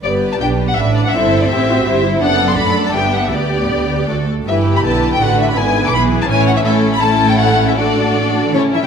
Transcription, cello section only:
\new Staff \with { instrumentName = "Cello section" } { \clef bass \time 3/4 \key g \major \tempo 4 = 164 << { g,4 b,4 a,4 | g,4 a,4 g,4 | fis,4 fis4 g,4 | d,4 d4 d,4 |
\key d \major g,4 b,4 a,4 | gis,4 b,4 a,4 | a,2.~ | a,4 r4 cis8 e16 g16 | } \\ { r2. | r2. | r2. | r2. |
r2. | r2. | r2. | r4 a,8. e16 d8. cis16 | } >> }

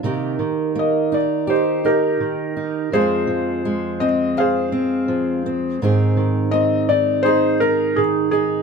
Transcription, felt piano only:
\new Staff \with { instrumentName = "Felt piano" } { \time 4/4 \key c \minor \tempo 4 = 83 << { r4 ees''8 d''8 c''8 bes'4. | c''4. ees''8 f''4. r8 | r4 ees''8 d''8 c''8 bes'8 aes'8 aes'8 | } \\ { r2 <ees' g'>8 <ees' g'>4. | <f' aes'>2 <aes' c''>2 | r2 <ees' aes'>2 | } >> }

